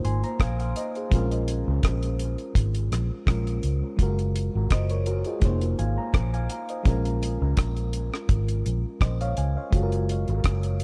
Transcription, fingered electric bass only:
0.05 0.22 G#1 medium
0.40 0.73 A#1 medium
1.12 1.63 A#1 medium
1.68 1.82 C#2 medium
1.84 2.35 A#1 medium
2.56 2.88 G#1 medium
2.92 3.09 A#1 medium
3.28 3.60 A#1 medium
3.64 3.81 C#2 medium
3.99 4.50 F#1 medium
4.55 4.70 G#1 medium
4.71 5.22 F#1 medium
5.42 5.75 F1 medium
5.79 5.96 G#1 medium
6.14 6.47 A#1 loud
6.86 7.37 A#1 loud
7.42 7.56 C#2 medium
7.58 8.09 A#1 loud
8.29 8.62 G#1 medium
8.66 8.83 A#1 medium
9.01 9.34 A#1 loud
9.38 9.55 C#2 medium
9.73 10.24 F#1 loud
10.29 10.43 G#1 medium
10.45 10.84 F#1 medium

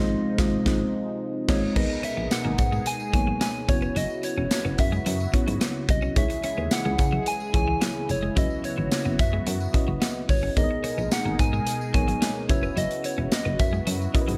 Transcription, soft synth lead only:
0.00 1.17 D#5 loud
1.49 1.74 C#5 medium
1.77 2.06 D#5 loud
2.05 2.31 E5 loud
2.32 2.89 F#5 loud
2.87 3.14 G#5 loud
3.15 3.40 G#5 loud
3.42 3.71 G#5 loud
3.69 3.99 C#5 loud
3.97 4.24 D#5 loud
4.24 4.75 C#5 loud
4.80 5.31 E5 loud
5.90 6.15 D#5 medium
6.18 6.43 E5 loud
6.45 6.74 E5 loud
6.73 7.29 F#5 loud
7.28 7.55 G#5 loud
7.56 8.12 G#5 loud
8.11 8.40 C#5 loud
8.38 8.64 D#5 loud
8.65 9.22 C#5 loud
9.20 9.75 E5 loud
10.30 10.55 C#5 medium
10.58 11.09 D#5 loud
11.13 11.42 F#5 loud
11.40 11.94 G#5 loud
11.95 12.52 G#5 loud
12.50 12.79 C#5 loud
12.78 13.07 D#5 loud
13.06 13.33 C#5 medium
13.33 13.62 D#5 medium
13.60 14.15 E5 loud

